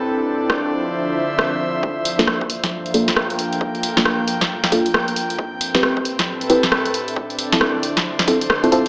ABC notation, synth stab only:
X:1
M:4/4
L:1/16
Q:"Swing 16ths" 1/4=135
K:Gdor
V:1 name="Synth stab"
z16 | z3 [B,DFA]6- [B,DFA] [B,DFA] z4 z | z3 [B,DFA]6- [B,DFA] [B,DFA] z4 z | z3 [CEG=B]6- [CEGB] [CEGB] z4 z |
z3 [CEFA]6- [CEFA] [CEFA] z2 [CEFA] [CEFA] z |]